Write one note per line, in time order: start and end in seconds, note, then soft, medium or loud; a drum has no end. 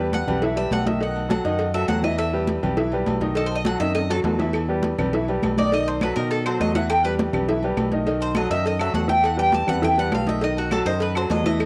0.00 0.22 E2 medium
0.00 0.22 G3 medium
0.00 0.22 G4 medium
0.00 0.11 B4 medium
0.00 0.23 B4 medium
0.13 0.54 F#5 medium
0.13 cowbell medium
0.13 high conga medium
0.13 low timbale medium
0.13 low agogo medium
0.27 0.68 B1 medium
0.27 0.40 G3 medium
0.27 0.40 G4 medium
0.27 0.40 B4 medium
0.27 low conga medium
0.27 low agogo loud
0.42 0.55 E3 medium
0.42 0.55 E4 medium
0.42 0.55 E5 medium
0.42 cowbell loud
0.42 high conga soft
0.56 0.80 G3 medium
0.56 0.80 G4 medium
0.56 0.81 B4 medium
0.56 0.71 E5 medium
0.56 high conga soft
0.56 low agogo medium
0.71 1.39 B1 medium
0.71 0.86 F#5 loud
0.71 cowbell medium
0.71 high conga medium
0.71 low timbale medium
0.71 low agogo loud
0.86 0.98 D#3 medium
0.86 0.98 D#4 medium
0.86 0.98 D#5 medium
0.86 1.01 E5 medium
0.86 cowbell medium
0.86 high conga medium
1.00 1.25 D#3 medium
1.00 1.25 D#4 medium
1.00 1.25 D#5 medium
1.00 1.29 F#5 medium
1.00 cowbell loud
1.00 high conga soft
1.00 low agogo medium
1.16 high conga soft
1.16 low agogo medium
1.29 1.42 F#3 medium
1.29 1.42 F#4 medium
1.29 1.42 A4 medium
1.29 1.72 F#5 medium
1.29 cowbell medium
1.29 high conga loud
1.29 low timbale medium
1.29 low agogo loud
1.45 1.86 F#2 medium
1.45 1.69 D#3 loud
1.45 1.69 D#4 medium
1.45 1.69 D#5 medium
1.45 cowbell medium
1.45 high conga soft
1.59 cowbell loud
1.59 high conga soft
1.59 low agogo medium
1.74 1.86 F#3 medium
1.74 1.87 F#4 medium
1.74 1.87 A4 medium
1.74 1.88 E5 medium
1.74 high conga soft
1.74 low agogo loud
1.88 2.57 E2 medium
1.88 2.01 F#3 medium
1.88 2.02 F#4 medium
1.88 2.02 A4 medium
1.88 2.03 F#5 loud
1.88 cowbell medium
1.88 high conga medium
1.88 low timbale medium
2.03 2.28 E3 medium
2.03 2.29 E4 medium
2.03 2.18 D#5 medium
2.03 2.28 E5 medium
2.03 high conga medium
2.03 low agogo medium
2.18 2.46 E5 medium
2.18 cowbell loud
2.18 high conga soft
2.18 low agogo loud
2.33 2.57 G3 medium
2.33 2.58 G4 medium
2.33 2.58 B4 medium
2.33 high conga soft
2.48 cowbell medium
2.48 high conga loud
2.48 low timbale medium
2.48 low agogo medium
2.63 3.04 B1 medium
2.63 2.75 G3 medium
2.63 2.75 G4 medium
2.63 2.75 B4 medium
2.63 low conga medium
2.63 low agogo loud
2.77 2.89 E3 medium
2.77 2.89 E4 medium
2.77 2.90 E5 medium
2.77 cowbell loud
2.77 high conga soft
2.92 3.17 G3 medium
2.92 3.17 G4 medium
2.92 3.17 B4 medium
2.92 high conga soft
2.92 low agogo medium
3.07 3.75 B1 loud
3.07 cowbell medium
3.07 high conga medium
3.07 low timbale medium
3.07 low agogo loud
3.21 3.34 D#3 medium
3.21 3.34 D#4 medium
3.21 3.34 D#5 medium
3.21 cowbell medium
3.21 high conga medium
3.36 3.60 D#3 medium
3.36 3.61 D#4 medium
3.36 3.46 A4 medium
3.36 3.61 D#5 medium
3.36 cowbell loud
3.36 high conga soft
3.36 low agogo medium
3.47 3.56 C5 medium
3.51 high conga soft
3.51 low agogo medium
3.56 3.65 D#5 medium
3.65 3.78 F#3 medium
3.65 3.78 F#4 medium
3.65 3.78 A4 medium
3.65 3.80 F#5 loud
3.65 cowbell medium
3.65 high conga medium
3.65 low timbale medium
3.65 low agogo loud
3.80 4.21 F#2 medium
3.80 4.05 D#3 medium
3.80 4.05 D#4 medium
3.80 4.05 D#5 medium
3.80 3.95 E5 loud
3.80 cowbell medium
3.80 high conga soft
3.80 high timbale medium
3.95 4.09 D#5 medium
3.95 cowbell loud
3.95 high conga soft
3.95 high timbale loud
3.95 low agogo medium
4.10 4.22 F#3 medium
4.10 4.22 F#4 medium
4.10 4.23 A4 medium
4.10 4.20 A4 loud
4.10 high conga soft
4.10 low timbale loud
4.10 low agogo loud
4.24 4.93 E2 medium
4.24 4.37 F#3 medium
4.24 4.37 F#4 medium
4.24 4.37 A4 medium
4.24 cowbell medium
4.24 high conga medium
4.24 low timbale loud
4.39 4.63 E3 medium
4.39 4.63 E4 medium
4.39 4.64 E5 medium
4.39 high conga medium
4.39 low timbale medium
4.39 low agogo medium
4.53 cowbell medium
4.53 high conga soft
4.53 low agogo loud
4.53 claves medium
4.68 4.93 G3 medium
4.68 4.93 G4 medium
4.68 4.93 B4 medium
4.68 high conga soft
4.83 cowbell medium
4.83 high conga loud
4.83 low timbale medium
4.83 low agogo medium
4.98 5.39 B1 loud
4.98 5.10 G3 medium
4.98 5.11 G4 medium
4.98 5.10 B4 medium
4.98 low conga medium
4.98 low agogo loud
4.98 claves medium
5.13 5.25 E3 medium
5.13 5.26 E4 medium
5.13 5.26 E5 medium
5.13 cowbell loud
5.13 high conga soft
5.28 5.52 G3 medium
5.28 5.53 G4 medium
5.28 5.53 B4 medium
5.28 high conga soft
5.28 low agogo medium
5.42 6.11 B1 loud
5.42 cowbell medium
5.42 high conga medium
5.42 low timbale medium
5.42 low agogo loud
5.42 claves medium
5.57 5.69 D#3 medium
5.57 5.70 D#4 medium
5.57 5.72 D5 medium
5.57 5.70 D#5 medium
5.57 cowbell medium
5.57 high conga medium
5.72 5.96 D#3 medium
5.72 5.96 D#4 medium
5.72 5.97 D#5 medium
5.72 5.87 D#5 loud
5.72 cowbell loud
5.72 high conga soft
5.72 low agogo medium
5.87 6.01 C5 medium
5.87 high conga soft
5.87 low agogo medium
6.01 6.14 F#3 medium
6.01 6.14 F#4 medium
6.01 6.14 A4 medium
6.01 6.15 B4 medium
6.01 cowbell medium
6.01 high conga loud
6.01 low timbale medium
6.01 low agogo loud
6.01 claves medium
6.16 6.57 B2 loud
6.16 6.41 D#3 medium
6.16 6.41 D#4 medium
6.16 6.30 A#4 medium
6.16 6.41 D#5 medium
6.16 cowbell medium
6.16 high conga soft
6.31 6.45 A4 medium
6.31 cowbell loud
6.31 high conga soft
6.31 low agogo medium
6.45 6.58 F#3 medium
6.45 6.58 F#4 medium
6.45 6.58 A4 medium
6.45 6.60 C5 medium
6.45 high conga soft
6.45 low agogo loud
6.45 claves medium
6.60 7.28 E2 medium
6.60 6.72 F#3 medium
6.60 6.72 F#4 medium
6.60 6.72 A4 medium
6.60 6.74 D#5 medium
6.60 cowbell medium
6.60 high conga medium
6.60 low timbale medium
6.75 6.99 E3 medium
6.75 6.99 E4 medium
6.75 6.99 E5 medium
6.75 6.89 F#5 loud
6.75 high conga medium
6.75 low agogo medium
6.89 7.04 G5 loud
6.89 cowbell loud
6.89 low agogo loud
6.89 claves medium
7.05 7.28 G3 medium
7.05 7.29 G4 medium
7.05 7.13 B4 loud
7.05 7.29 B4 medium
7.05 high conga soft
7.19 cowbell medium
7.19 high conga loud
7.19 low timbale medium
7.19 low agogo medium
7.33 7.74 B1 loud
7.33 7.45 G3 medium
7.33 7.46 G4 medium
7.33 7.46 B4 medium
7.33 low conga medium
7.33 low agogo loud
7.33 claves medium
7.48 7.60 E3 medium
7.48 7.60 E4 medium
7.48 7.61 E5 medium
7.48 cowbell loud
7.48 high conga soft
7.63 7.88 G3 medium
7.63 7.88 G4 medium
7.63 7.88 B4 medium
7.63 high conga soft
7.63 low agogo medium
7.77 8.45 B1 loud
7.77 cowbell medium
7.77 high conga medium
7.77 low timbale medium
7.77 low agogo loud
7.77 claves medium
7.91 8.05 D#3 medium
7.91 8.05 D#4 medium
7.91 8.05 D#5 medium
7.91 cowbell medium
7.91 high conga medium
8.06 8.31 D#3 medium
8.06 8.31 D#4 medium
8.06 8.31 D#5 medium
8.06 cowbell loud
8.06 high conga soft
8.06 low agogo medium
8.21 8.36 C5 medium
8.21 high conga soft
8.21 low agogo medium
8.35 8.49 F#3 medium
8.35 8.49 F#4 medium
8.35 8.49 A4 medium
8.35 8.50 D#5 medium
8.35 cowbell medium
8.35 high conga loud
8.35 low timbale medium
8.35 low agogo loud
8.35 claves medium
8.50 8.92 F#2 loud
8.50 8.75 D#3 medium
8.50 8.75 D#4 medium
8.50 8.75 D#5 medium
8.50 8.65 E5 loud
8.50 cowbell medium
8.50 high conga soft
8.65 8.80 D#5 medium
8.65 cowbell loud
8.65 high conga soft
8.65 low agogo medium
8.79 8.92 F#3 medium
8.79 8.92 F#4 medium
8.79 8.92 A4 medium
8.79 8.94 E5 medium
8.79 high conga soft
8.79 low agogo loud
8.79 claves medium
8.94 9.62 E2 loud
8.94 9.06 F#3 medium
8.94 9.06 F#4 medium
8.94 9.07 A4 medium
8.94 9.09 F#5 medium
8.94 cowbell medium
8.94 high conga medium
8.94 low timbale medium
9.08 9.33 E3 medium
9.08 9.33 E4 medium
9.08 9.33 E5 medium
9.08 9.24 G5 loud
9.08 high conga medium
9.08 low agogo medium
9.23 9.39 F#5 medium
9.23 cowbell loud
9.23 high conga soft
9.23 low agogo loud
9.23 claves medium
9.37 9.62 G3 medium
9.37 9.62 G4 medium
9.37 9.62 B4 medium
9.37 9.53 G5 medium
9.37 high conga soft
9.52 9.68 A5 loud
9.52 cowbell medium
9.52 high conga loud
9.52 low timbale medium
9.52 low agogo medium
9.67 10.09 E2 medium
9.67 9.80 G3 medium
9.67 9.80 G4 medium
9.67 9.80 B4 medium
9.67 9.83 F#5 loud
9.67 low conga medium
9.67 low agogo loud
9.67 claves medium
9.81 9.94 E3 medium
9.81 9.95 E4 medium
9.81 9.95 E5 medium
9.81 9.98 G5 loud
9.81 cowbell loud
9.81 high conga soft
9.81 low conga medium
9.98 10.22 G3 medium
9.98 10.22 G4 medium
9.98 10.22 B4 medium
9.98 10.13 F#5 loud
9.98 high conga soft
9.98 low agogo medium
10.12 10.80 B1 loud
10.12 10.28 F5 medium
10.12 cowbell medium
10.12 high conga medium
10.12 low timbale medium
10.12 low agogo loud
10.12 claves medium
10.27 10.39 D#3 medium
10.27 10.39 D#4 medium
10.27 10.40 D#5 medium
10.27 10.42 E5 medium
10.27 cowbell medium
10.27 high conga medium
10.41 10.66 D#3 medium
10.41 10.67 D#4 medium
10.41 10.66 D#5 medium
10.41 10.57 D#5 medium
10.41 cowbell loud
10.41 high conga soft
10.41 low agogo medium
10.57 10.72 F#4 medium
10.57 high conga soft
10.57 low agogo medium
10.71 10.83 F#3 medium
10.71 10.83 F#4 medium
10.71 10.83 A4 medium
10.71 10.86 A4 medium
10.71 cowbell medium
10.71 high conga loud
10.71 low timbale medium
10.71 low agogo loud
10.71 claves medium
10.85 11.27 F#2 medium
10.85 11.10 D#3 medium
10.85 11.10 D#4 medium
10.85 11.00 C5 loud
10.85 11.11 D#5 medium
10.85 cowbell medium
10.85 high conga soft
11.00 11.16 B4 medium
11.00 cowbell loud
11.00 high conga soft
11.00 low agogo medium
11.15 11.28 F#3 medium
11.15 11.27 F#4 medium
11.15 11.28 A4 medium
11.15 11.31 C5 loud
11.15 high conga soft
11.15 low agogo loud
11.15 claves medium
11.30 11.65 E2 loud
11.30 11.42 F#3 medium
11.30 11.42 F#4 medium
11.30 11.43 A4 medium
11.30 11.45 D#5 medium
11.30 cowbell medium
11.30 high conga medium
11.30 low timbale medium
11.44 11.65 E3 medium
11.44 11.65 E4 medium
11.44 11.65 D#5 loud
11.44 11.65 E5 medium
11.44 high conga medium
11.44 low agogo medium
11.60 cowbell loud
11.60 high conga soft
11.60 low agogo loud
11.60 claves medium